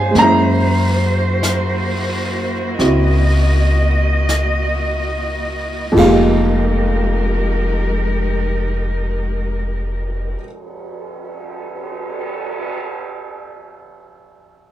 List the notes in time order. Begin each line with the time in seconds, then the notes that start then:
Already playing: G2 G3 C4 D#4 F4 C5 F5 G5 G#5
0.11 G#3 A#3 E4 F#4
0.15 F#2 C#4 A#5, brush sweep, snare
0.22 E4
1.43 brush sweep, snare, hi-hat pedal
2.78 C#2 C4 E4 F#4 D#5, brush sweep, snare
4.29 brush sweep, snare, hi-hat pedal
5.92 F2 F3
5.97 F1 G#3 A#3 D#4 G4 A#4 F5, kick, crash
6.02 D#4 G4
7.19 cymbal swell